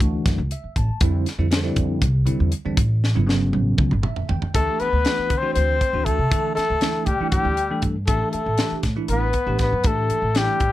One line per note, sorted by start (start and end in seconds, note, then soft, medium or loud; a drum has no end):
0.00 0.23 D2 medium
0.00 0.40 E3 medium
0.00 0.40 A3 medium
0.00 0.40 D4 medium
0.00 0.40 F#4 medium
0.00 kick medium
0.00 closed hi-hat medium
0.26 0.37 F#2 medium
0.26 kick loud
0.26 snare soft
0.26 closed hi-hat medium
0.38 0.50 C#2 medium
0.51 0.75 E5 medium
0.51 closed hi-hat medium
0.64 muted upright bass stroke soft
0.76 0.88 A1 medium
0.76 1.00 A5 medium
0.76 kick medium
0.76 closed hi-hat medium
0.89 muted upright bass stroke soft
1.01 1.24 F2 medium
1.01 1.26 D3 medium
1.01 1.26 G3 medium
1.01 1.26 C4 medium
1.01 1.26 E4 loud
1.01 kick loud
1.01 closed hi-hat medium
1.26 snare soft
1.26 closed hi-hat medium
1.38 1.73 F2 medium
1.38 1.47 D3 medium
1.38 1.47 G3 medium
1.38 1.47 C4 medium
1.38 1.47 E4 medium
1.51 1.59 D3 medium
1.51 1.59 G3 medium
1.51 1.59 C4 medium
1.51 1.60 D4 medium
1.51 snare loud
1.51 closed hi-hat medium
1.63 2.04 D3 medium
1.63 2.04 G3 medium
1.63 2.04 C4 medium
1.63 2.04 E4 medium
1.76 2.00 F2 medium
1.76 kick medium
1.76 closed hi-hat medium
2.02 2.25 C2 medium
2.02 kick medium
2.02 closed hi-hat medium
2.26 2.51 D3 medium
2.26 2.51 G3 medium
2.26 2.51 C4 medium
2.26 2.51 E4 loud
2.26 muted upright bass stroke soft
2.26 closed hi-hat medium
2.40 2.52 E2 medium
2.52 closed hi-hat medium
2.65 2.77 E2 medium
2.65 2.78 D3 medium
2.65 2.78 G3 medium
2.65 2.78 C4 medium
2.65 2.78 D4 medium
2.77 3.12 A1 medium
2.77 kick loud
2.77 closed hi-hat medium
3.04 snare medium
3.15 3.51 G1 medium
3.15 3.23 C#3 medium
3.15 3.24 F#3 medium
3.15 3.24 B3 medium
3.15 3.24 E4 medium
3.27 3.92 C#3 medium
3.27 3.92 F#3 medium
3.27 3.92 B3 medium
3.27 3.92 C#4 loud
3.27 snare medium
3.53 3.77 A1 medium
3.53 high tom medium
3.78 3.90 C#2 medium
3.78 kick loud
3.78 mid tom medium
3.91 4.04 G1 medium
3.91 mid tom medium
4.03 4.27 E5 medium
4.03 mid tom medium
4.16 muted upright bass stroke soft
4.16 floor tom medium
4.29 4.41 E2 medium
4.29 4.53 G5 medium
4.29 floor tom medium
4.42 muted upright bass stroke soft
4.42 floor tom medium
4.54 4.66 D2 medium
4.54 4.87 E3 medium
4.54 4.87 A3 medium
4.54 4.83 A3 medium
4.54 4.87 D4 medium
4.54 4.87 G4 medium
4.54 4.81 A4 medium
4.54 kick loud
4.54 closed hi-hat medium
4.79 5.40 B3 medium
4.79 5.39 B4 medium
4.79 muted upright bass stroke soft
4.79 closed hi-hat soft
4.93 5.04 D2 medium
5.05 5.29 E3 medium
5.05 5.30 A3 medium
5.05 5.30 D4 medium
5.05 5.30 F#4 medium
5.05 snare loud
5.05 closed hi-hat medium
5.18 muted upright bass stroke soft
5.30 5.42 D3 medium
5.30 kick medium
5.30 closed hi-hat medium
5.38 5.54 C4 medium
5.38 5.53 C5 medium
5.42 5.75 E3 medium
5.42 5.75 A3 medium
5.42 5.75 D4 medium
5.42 5.75 F#4 medium
5.54 5.79 D2 medium
5.54 6.07 C4 medium
5.54 6.06 C5 medium
5.54 closed hi-hat medium
5.81 kick medium
5.81 closed hi-hat medium
5.93 6.17 D2 medium
5.93 6.18 E3 medium
5.93 6.18 A3 medium
5.93 6.18 D4 medium
5.93 6.18 F#4 medium
6.05 6.54 A3 medium
6.05 6.54 A4 medium
6.05 kick medium
6.05 closed hi-hat medium
6.19 6.30 C3 medium
6.31 6.55 D3 medium
6.31 6.63 E3 medium
6.31 6.64 A3 medium
6.31 6.64 D4 medium
6.31 6.64 A4 medium
6.31 kick loud
6.31 closed hi-hat medium
6.55 7.09 A3 medium
6.55 7.07 A4 medium
6.55 muted upright bass stroke soft
6.55 snare soft
6.55 closed hi-hat soft
6.70 6.93 D2 medium
6.81 7.06 E3 medium
6.81 7.06 A3 medium
6.81 7.06 D4 medium
6.81 7.06 E4 medium
6.81 snare medium
6.81 closed hi-hat medium
7.06 7.19 D2 medium
7.06 7.33 G3 medium
7.06 7.30 G4 medium
7.06 kick medium
7.06 closed hi-hat medium
7.20 7.52 E3 medium
7.20 7.52 A3 medium
7.20 7.53 D4 medium
7.20 7.53 E4 medium
7.20 muted upright bass stroke soft
7.30 7.44 F#2 medium
7.30 7.86 G3 medium
7.30 7.84 G4 medium
7.30 kick medium
7.30 closed hi-hat medium
7.45 7.68 D2 medium
7.57 closed hi-hat medium
7.70 7.95 E3 medium
7.70 7.95 A3 medium
7.70 7.95 D4 medium
7.70 7.95 A4 medium
7.82 8.06 G2 medium
7.82 kick medium
7.82 closed hi-hat medium
8.07 8.20 A1 medium
8.07 8.40 E3 medium
8.07 8.40 A3 medium
8.07 8.32 A3 medium
8.07 8.40 D4 medium
8.07 8.41 G4 medium
8.07 8.31 A4 medium
8.07 kick loud
8.07 closed hi-hat medium
8.32 8.79 A3 medium
8.32 8.78 A4 medium
8.32 muted upright bass stroke soft
8.32 closed hi-hat soft
8.46 8.58 A1 medium
8.58 8.83 E3 medium
8.58 8.83 A3 medium
8.58 8.83 D4 medium
8.58 8.83 G4 medium
8.58 snare loud
8.58 closed hi-hat medium
8.71 muted upright bass stroke soft
8.83 8.95 A2 medium
8.83 kick medium
8.83 snare soft
8.83 closed hi-hat medium
8.96 9.29 E3 medium
8.96 9.29 A3 medium
8.96 9.29 D4 medium
8.96 9.29 E4 medium
9.08 9.32 A1 medium
9.08 9.57 B4 medium
9.08 closed hi-hat medium
9.12 9.58 B3 medium
9.33 kick medium
9.33 closed hi-hat medium
9.47 9.70 A1 medium
9.47 9.71 E3 medium
9.47 9.71 A3 medium
9.47 9.72 D4 medium
9.47 9.72 G4 medium
9.59 9.88 B4 medium
9.59 kick medium
9.59 snare soft
9.59 closed hi-hat soft
9.63 9.88 B3 medium
9.72 9.84 F#2 medium
9.84 10.08 A2 medium
9.84 10.17 E3 medium
9.84 10.18 A3 medium
9.84 10.39 A3 medium
9.84 10.18 D4 medium
9.84 10.18 G4 medium
9.84 10.39 A4 medium
9.84 kick medium
9.84 closed hi-hat medium
10.10 muted upright bass stroke soft
10.10 closed hi-hat medium
10.22 10.46 A1 medium
10.35 10.59 E3 medium
10.35 10.72 G3 medium
10.35 10.60 A3 medium
10.35 10.60 D4 medium
10.35 10.60 E4 medium
10.35 10.72 G4 medium
10.35 snare medium
10.35 closed hi-hat medium
10.60 10.72 A1 medium
10.60 kick medium
10.60 closed hi-hat soft